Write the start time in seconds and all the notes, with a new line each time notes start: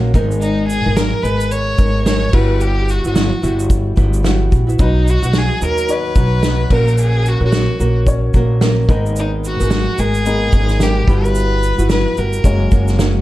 Already playing: A#1 A#3 C#4 F#4 A#4
0.14 G#1 G#2 D#3 G#3 B3 D#4 A#4, kick, shaker
0.31 shaker
0.41 D#4, shaker
0.69 G#4, shaker
0.85 G#1 G#3 B3 D#4 A#4
0.97 A#4, snare, shaker
1.22 G#1 G#3 B3 D#4 A#4 B4, shaker
1.40 shaker
1.51 C#5, shaker
1.77 G#1 G#3 B3 D#4 A#4, kick, shaker
2.05 G#3 B3 D#4 A#4 C#5, snare, shaker
2.32 G1 G3 B3 E4 F#4 B4, kick, crash
2.61 G4, shaker
2.89 F#4, shaker
3.04 G1 B3 E4 F#4, shaker
3.16 snare, shaker
3.42 G1 G3 B3 E4 F#4, shaker
3.59 shaker
3.70 kick, shaker
3.96 G1 G3 B3 E4 F#4, kick, shaker
4.13 shaker
4.23 G3 B3 E4 F#4, snare, shaker
4.52 A#1, kick, shaker
4.67 B3 E4 F#4, shaker
4.79 B1 B2 F#3 B3 C#4 D#4 F#4 B4, kick, shaker
4.86 D#4
5.08 F#4, shaker
5.22 B1 B3 D#4 F#4, shaker
5.33 snare, shaker
5.38 G#4
5.60 D#2 F#3 B3 D#4 F#4, shaker
5.66 A#4
5.78 shaker
5.88 D#4 F#4 C#5, shaker
5.93 B4
6.15 B1 F#3 B3 D#4 F#4, kick, shaker
6.42 F#3 B3 D#4 F#4, snare, shaker
6.70 A#1 A#3 C#4 F#4 A#4, kick, crash
6.88 shaker
6.98 G#4, shaker
7.26 F#4, shaker
7.41 A#1 C#4 F#4 A#4
7.46 F#4
7.52 snare, shaker
7.79 A#1 A#3 C#4 F#4 A#4, shaker
8.06 C#4 F#4 C#5, kick, shaker
8.34 A#1 A#3 C#4 F#4 A#4, kick, shaker
8.61 A#3 C#4 F#4 A#4, snare, shaker
8.88 G#1 G#2 D#3 G#3 A#3 B3 D#4 A#4, kick, shaker
9.06 shaker
9.16 D#4, shaker
9.44 F#4, shaker
9.60 G#1 G#3 B3 D#4 A#4, shaker
9.71 snare, shaker
9.98 G#1 G#3 B3 D#4 G#4 A#4, shaker
10.14 shaker
10.25 G#3 A#3 B3 D#4 A#4, shaker
10.52 G#1 G#3 B3 D#4 A#4, kick, shaker
10.69 snare, shaker
10.80 G#3 B3 D#4 G4 A#4, snare, shaker
11.08 G1 G3 B3 E4 F#4 B4, kick, shaker
11.25 B4, shaker
11.35 shaker
11.63 shaker
11.78 G1 B3 E4 F#4, shaker
11.90 B4, snare, shaker
12.17 G1 G3 B3 E4 F#4 A#4, shaker
12.33 shaker
12.44 F#1 F#2 C#3 G#3 A#3 C#4 F#4 A#4, kick, shaker
12.71 F#1 G#3 A#3 C#4 F#4, kick, shaker
12.88 snare, shaker
12.98 G#3 A#3 C#4 F#4, snare, shaker